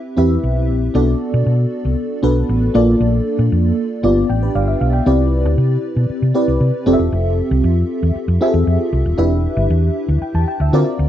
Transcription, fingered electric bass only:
0, 0, Header, 1, 3, 480
1, 0, Start_track
1, 0, Tempo, 514580
1, 886, Time_signature, 4, 2, 24, 8
1, 10344, End_track
2, 0, Start_track
2, 0, Title_t, "Fingered electric bass"
2, 0, Program_c, 0, 33
2, 164, Note_on_c, 0, 40, 89
2, 335, Note_off_c, 0, 40, 0
2, 405, Note_on_c, 0, 35, 88
2, 646, Note_off_c, 0, 35, 0
2, 646, Note_on_c, 0, 34, 99
2, 816, Note_off_c, 0, 34, 0
2, 883, Note_on_c, 0, 35, 105
2, 1054, Note_off_c, 0, 35, 0
2, 1247, Note_on_c, 0, 47, 101
2, 1332, Note_off_c, 0, 47, 0
2, 1365, Note_on_c, 0, 47, 96
2, 1535, Note_off_c, 0, 47, 0
2, 1725, Note_on_c, 0, 36, 86
2, 1810, Note_off_c, 0, 36, 0
2, 2082, Note_on_c, 0, 35, 91
2, 2254, Note_off_c, 0, 35, 0
2, 2324, Note_on_c, 0, 33, 89
2, 2495, Note_off_c, 0, 33, 0
2, 2564, Note_on_c, 0, 34, 115
2, 2735, Note_off_c, 0, 34, 0
2, 2802, Note_on_c, 0, 34, 117
2, 2973, Note_off_c, 0, 34, 0
2, 3160, Note_on_c, 0, 46, 100
2, 3247, Note_off_c, 0, 46, 0
2, 3284, Note_on_c, 0, 41, 101
2, 3455, Note_off_c, 0, 41, 0
2, 3763, Note_on_c, 0, 31, 101
2, 3934, Note_off_c, 0, 31, 0
2, 4007, Note_on_c, 0, 33, 85
2, 4177, Note_off_c, 0, 33, 0
2, 4245, Note_on_c, 0, 31, 97
2, 4416, Note_off_c, 0, 31, 0
2, 4486, Note_on_c, 0, 35, 91
2, 4656, Note_off_c, 0, 35, 0
2, 4724, Note_on_c, 0, 36, 110
2, 5087, Note_off_c, 0, 36, 0
2, 5087, Note_on_c, 0, 38, 88
2, 5172, Note_off_c, 0, 38, 0
2, 5203, Note_on_c, 0, 48, 97
2, 5374, Note_off_c, 0, 48, 0
2, 5563, Note_on_c, 0, 47, 85
2, 5649, Note_off_c, 0, 47, 0
2, 5804, Note_on_c, 0, 48, 90
2, 5890, Note_off_c, 0, 48, 0
2, 6043, Note_on_c, 0, 36, 82
2, 6129, Note_off_c, 0, 36, 0
2, 6161, Note_on_c, 0, 48, 100
2, 6248, Note_off_c, 0, 48, 0
2, 6399, Note_on_c, 0, 29, 110
2, 6487, Note_off_c, 0, 29, 0
2, 6522, Note_on_c, 0, 28, 82
2, 6609, Note_off_c, 0, 28, 0
2, 6644, Note_on_c, 0, 29, 101
2, 6900, Note_off_c, 0, 29, 0
2, 7006, Note_on_c, 0, 36, 108
2, 7091, Note_off_c, 0, 36, 0
2, 7125, Note_on_c, 0, 41, 100
2, 7296, Note_off_c, 0, 41, 0
2, 7487, Note_on_c, 0, 40, 92
2, 7572, Note_off_c, 0, 40, 0
2, 7723, Note_on_c, 0, 41, 97
2, 7809, Note_off_c, 0, 41, 0
2, 7963, Note_on_c, 0, 40, 92
2, 8050, Note_off_c, 0, 40, 0
2, 8087, Note_on_c, 0, 41, 97
2, 8172, Note_off_c, 0, 41, 0
2, 8326, Note_on_c, 0, 36, 95
2, 8411, Note_off_c, 0, 36, 0
2, 8446, Note_on_c, 0, 27, 91
2, 8531, Note_off_c, 0, 27, 0
2, 8563, Note_on_c, 0, 28, 111
2, 8819, Note_off_c, 0, 28, 0
2, 8924, Note_on_c, 0, 31, 108
2, 9010, Note_off_c, 0, 31, 0
2, 9049, Note_on_c, 0, 40, 120
2, 9219, Note_off_c, 0, 40, 0
2, 9407, Note_on_c, 0, 38, 94
2, 9492, Note_off_c, 0, 38, 0
2, 9649, Note_on_c, 0, 40, 91
2, 9734, Note_off_c, 0, 40, 0
2, 9887, Note_on_c, 0, 38, 94
2, 9972, Note_off_c, 0, 38, 0
2, 10008, Note_on_c, 0, 50, 102
2, 10093, Note_off_c, 0, 50, 0
2, 10252, Note_on_c, 0, 38, 100
2, 10335, Note_off_c, 0, 38, 0
2, 10344, End_track
3, 0, Start_track
3, 0, Title_t, "Muted fingered electric bass strokes"
3, 5687, Note_on_c, 9, 29, 50
3, 5780, Note_off_c, 9, 29, 0
3, 7607, Note_on_c, 9, 29, 47
3, 7701, Note_off_c, 9, 29, 0
3, 9529, Note_on_c, 9, 29, 50
3, 9622, Note_off_c, 9, 29, 0
3, 10344, End_track
0, 0, End_of_file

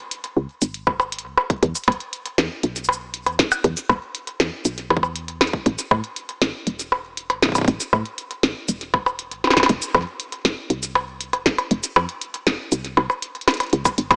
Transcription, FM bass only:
0, 0, Header, 1, 2, 480
1, 0, Start_track
1, 0, Tempo, 504202
1, 1548, Time_signature, 4, 2, 24, 8
1, 13480, End_track
2, 0, Start_track
2, 0, Title_t, "FM bass"
2, 0, Program_c, 0, 39
2, 348, Note_on_c, 0, 37, 89
2, 450, Note_off_c, 0, 37, 0
2, 589, Note_on_c, 0, 32, 89
2, 1188, Note_on_c, 0, 37, 104
2, 1202, Note_off_c, 0, 32, 0
2, 1289, Note_off_c, 0, 37, 0
2, 1548, Note_on_c, 0, 40, 100
2, 1649, Note_off_c, 0, 40, 0
2, 1788, Note_on_c, 0, 28, 83
2, 1889, Note_off_c, 0, 28, 0
2, 2268, Note_on_c, 0, 40, 88
2, 2370, Note_off_c, 0, 40, 0
2, 2509, Note_on_c, 0, 35, 89
2, 3108, Note_on_c, 0, 40, 108
2, 3123, Note_off_c, 0, 35, 0
2, 3210, Note_off_c, 0, 40, 0
2, 3468, Note_on_c, 0, 40, 98
2, 3569, Note_off_c, 0, 40, 0
2, 3708, Note_on_c, 0, 28, 84
2, 3810, Note_off_c, 0, 28, 0
2, 4188, Note_on_c, 0, 40, 88
2, 4290, Note_off_c, 0, 40, 0
2, 4428, Note_on_c, 0, 35, 88
2, 4663, Note_off_c, 0, 35, 0
2, 4669, Note_on_c, 0, 40, 81
2, 5239, Note_off_c, 0, 40, 0
2, 5388, Note_on_c, 0, 33, 98
2, 5490, Note_off_c, 0, 33, 0
2, 5628, Note_on_c, 0, 45, 85
2, 5730, Note_off_c, 0, 45, 0
2, 6108, Note_on_c, 0, 33, 88
2, 6210, Note_off_c, 0, 33, 0
2, 6349, Note_on_c, 0, 28, 87
2, 6949, Note_on_c, 0, 33, 107
2, 6963, Note_off_c, 0, 28, 0
2, 7050, Note_off_c, 0, 33, 0
2, 7309, Note_on_c, 0, 33, 97
2, 7410, Note_off_c, 0, 33, 0
2, 7549, Note_on_c, 0, 45, 84
2, 7650, Note_off_c, 0, 45, 0
2, 8029, Note_on_c, 0, 33, 87
2, 8130, Note_off_c, 0, 33, 0
2, 8268, Note_on_c, 0, 28, 89
2, 8868, Note_on_c, 0, 33, 104
2, 8882, Note_off_c, 0, 28, 0
2, 8970, Note_off_c, 0, 33, 0
2, 9228, Note_on_c, 0, 29, 100
2, 9330, Note_off_c, 0, 29, 0
2, 9468, Note_on_c, 0, 41, 85
2, 9570, Note_off_c, 0, 41, 0
2, 9947, Note_on_c, 0, 29, 88
2, 10049, Note_off_c, 0, 29, 0
2, 10187, Note_on_c, 0, 36, 89
2, 10787, Note_on_c, 0, 29, 106
2, 10801, Note_off_c, 0, 36, 0
2, 10889, Note_off_c, 0, 29, 0
2, 11148, Note_on_c, 0, 29, 99
2, 11249, Note_off_c, 0, 29, 0
2, 11388, Note_on_c, 0, 41, 83
2, 11490, Note_off_c, 0, 41, 0
2, 11868, Note_on_c, 0, 29, 86
2, 11970, Note_off_c, 0, 29, 0
2, 12109, Note_on_c, 0, 36, 91
2, 12344, Note_off_c, 0, 36, 0
2, 12350, Note_on_c, 0, 36, 99
2, 12450, Note_off_c, 0, 36, 0
2, 13070, Note_on_c, 0, 37, 97
2, 13170, Note_off_c, 0, 37, 0
2, 13309, Note_on_c, 0, 32, 84
2, 13410, Note_off_c, 0, 32, 0
2, 13480, End_track
0, 0, End_of_file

